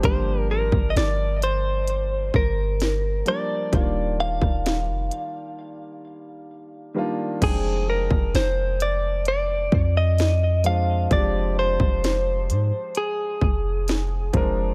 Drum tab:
CC |----------------|----------------|x---------------|----------------|
HH |x---x-x-x---x-x-|x---x-x---------|x---x-x-x---x-x-|x---x-x-x---x-x-|
SD |----o-------o---|---ro-----------|----o-------o---|----o-------o---|
BD |o--o------o-----|o--o------------|o--o------o-----|o--o------o---o-|